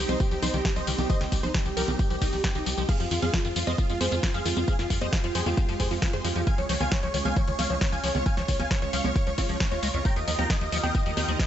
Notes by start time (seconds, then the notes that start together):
Already playing: G3 C4 D#4
0.09 C2 F3 D#4 C5, closed hi-hat, tambourine, high conga
0.20 D#3 G4, kick, closed hi-hat, tambourine
0.31 C2 F3 G4, closed hi-hat, tambourine
0.42 C2 F3 D#4 C5, open hi-hat, tambourine, high conga
0.54 C2 D#3 G4, closed hi-hat, tambourine
0.65 F3 G4, kick, snare, closed hi-hat, tambourine
0.76 C2 F3 C5 D#5, closed hi-hat, tambourine
0.87 C2 D#3 G4, open hi-hat, tambourine
0.98 C2 F3 G4, closed hi-hat, tambourine, high conga
1.10 F3 C5 D#5, kick, closed hi-hat, tambourine
1.21 C2 D#3 G4, snare, closed hi-hat, tambourine
1.32 C2 F3 G4, kick, open hi-hat, tambourine
1.43 C2 F3 D#4 C5, closed hi-hat, tambourine, high conga
1.54 D#3 G4, kick, snare, closed hi-hat, tambourine
1.66 C2 F3 G4, closed hi-hat, tambourine
1.77 C2 F3 G4 A#4, open hi-hat, tambourine
1.88 C2 D#3 G4, tambourine, high conga
1.99 F3 G4, kick, closed hi-hat, tambourine
2.10 C2 F3 G4, closed hi-hat, tambourine
2.21 C2 D#3 D#4 G4, kick, open hi-hat, tambourine
2.33 C2 F3 G4, open hi-hat, tambourine
2.44 F3 G4, kick, snare, closed hi-hat, tambourine
2.55 C2 D#3 D#4 G4, closed hi-hat, tambourine
2.66 C2 F3 G4, open hi-hat, tambourine
2.78 C2 F3 G4, closed hi-hat, tambourine
2.89 F3 G#3 C4 F4 G#4 F5, kick, closed hi-hat, tambourine, crash
3.00 F2 F3 F4, closed hi-hat, tambourine
3.11 F2 D#3 F4, open hi-hat, tambourine
3.22 F2 F3 G#4 F5, closed hi-hat, tambourine, high conga
3.34 F3 F4, kick, snare, closed hi-hat, tambourine
3.45 F2 D#3 F4, closed hi-hat, tambourine
3.56 F2 F3 F4, open hi-hat, tambourine
3.67 F2 F3 C5 D#5, closed hi-hat, tambourine, high conga
3.78 D#3 F4, kick, closed hi-hat, tambourine
3.90 F2 F3 F4, closed hi-hat, tambourine
4.01 F2 F3 G#4 C5, open hi-hat, tambourine, high conga
4.12 F2 D#3 F4, closed hi-hat, tambourine
4.23 F3 F4, kick, snare, closed hi-hat, tambourine
4.34 F2 F3 G#4 F5, closed hi-hat, tambourine
4.45 F2 D#3 F4, open hi-hat, tambourine
4.57 F2 F3 F4, closed hi-hat, tambourine, high conga
4.68 F3 G4 G#4 F5, kick, closed hi-hat, tambourine
4.79 F2 D#3 F4, snare, closed hi-hat, tambourine
4.90 F2 F3 F4, kick, open hi-hat, tambourine
5.01 F2 F3 C5 D#5, closed hi-hat, tambourine, high conga
5.13 D#3 F4, kick, snare, closed hi-hat, tambourine
5.24 F2 F3 F4, closed hi-hat, tambourine
5.35 F2 F3 G#4 C5, open hi-hat, tambourine
5.46 F2 D#3 F4, closed hi-hat, tambourine, high conga
5.57 F3 F4, kick, closed hi-hat, tambourine
5.68 F2 F3 F4, closed hi-hat, tambourine
5.80 F2 D#3 G#4 C5, kick, open hi-hat, tambourine
5.91 F2 F3 F4, open hi-hat, tambourine
6.02 F3 F4, kick, snare, closed hi-hat, tambourine
6.13 F2 D#3 G#4 C5, closed hi-hat, tambourine
6.25 F2 F3 F4, open hi-hat, tambourine
6.36 F2 F3 F4, closed hi-hat, tambourine
6.47 D#3 C#4 F4 F5 G#5, kick, closed hi-hat, tambourine
6.58 C#2 F3 C#5, closed hi-hat, tambourine
6.69 C#2 F3 C#5, open hi-hat, tambourine
6.80 C#2 D#3 F5 G#5, tambourine, high conga
6.92 F3 C#5, kick, snare, closed hi-hat, tambourine
7.03 C#2 F3 C#5, closed hi-hat, tambourine
7.14 C#2 D#3 C#5, open hi-hat, tambourine
7.25 C#2 F3 F5 G#5, closed hi-hat, tambourine, high conga
7.36 F3 C#5, kick, closed hi-hat, tambourine
7.48 C#2 D#3 C#5, closed hi-hat, tambourine
7.59 C#2 F3 C#5 F5, open hi-hat, tambourine, high conga
7.70 C#2 F3 C#5, closed hi-hat, tambourine
7.81 D#3 C#5, kick, snare, closed hi-hat, tambourine
7.92 C#2 F3 F5 G#5, closed hi-hat, tambourine
8.04 C#2 F3 C#5, open hi-hat, tambourine
8.15 C#2 D#3 C#5, tambourine, high conga
8.26 F3 F5 G#5, kick, closed hi-hat, tambourine
8.37 C#2 F3 C#5, snare, closed hi-hat, tambourine
8.48 C#2 D#3 C#5, kick, open hi-hat, tambourine
8.59 C#2 F3 F5 G#5, closed hi-hat, tambourine, high conga
8.71 F3 C#5, kick, snare, closed hi-hat, tambourine
8.82 C#2 D#3 C#5, closed hi-hat, tambourine
8.93 C#2 F3 C#5 F5, open hi-hat, tambourine
9.04 C#2 F3 C#5, closed hi-hat, tambourine, high conga
9.15 D#3 C#5, kick, closed hi-hat, tambourine
9.27 C#2 F3 C#5, closed hi-hat, tambourine
9.38 G#1 C4 F4 C#5, kick, open hi-hat, tambourine
9.49 C#2 F3 C#5, open hi-hat, tambourine
9.60 G#3 C#5, kick, snare, closed hi-hat, tambourine
9.71 D#2 G#3 F4 C#5, closed hi-hat, tambourine
9.83 C#2 G#3 C#5, open hi-hat, tambourine
9.94 C#2 F2 C#5, closed hi-hat, tambourine
10.05 D#3 F3 D#4 G4 A#4 G5 A#5, kick, closed hi-hat, tambourine
10.16 D#2 D#3 D#5, closed hi-hat, tambourine
10.27 D#2 F3 D#5, open hi-hat, tambourine
10.39 D#2 F3 G5 A#5, closed hi-hat, tambourine, high conga
10.50 D#3 D#5, kick, snare, closed hi-hat, tambourine
10.61 D#2 F3 D#5, closed hi-hat, tambourine
10.72 D#2 F3 D#5, open hi-hat, tambourine
10.84 D#2 D#3 D#5 G5, closed hi-hat, tambourine, high conga
10.95 F3 D#5, kick, closed hi-hat, tambourine
11.06 D#2 F3 D#5, closed hi-hat, tambourine
11.17 D#2 D#3 D#5 G5, open hi-hat, tambourine, high conga
11.28 D#2 F3 D#5, closed hi-hat, tambourine
11.39 F3 D#5, kick, snare, closed hi-hat, tambourine